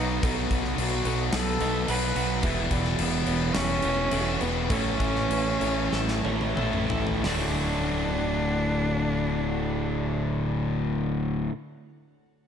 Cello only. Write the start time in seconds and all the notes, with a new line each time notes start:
Already playing: D#4
0.80 F#4
1.35 A4
1.90 B4
2.99 B3
3.54 C#4
4.41 B3
4.70 C#4
7.24 D4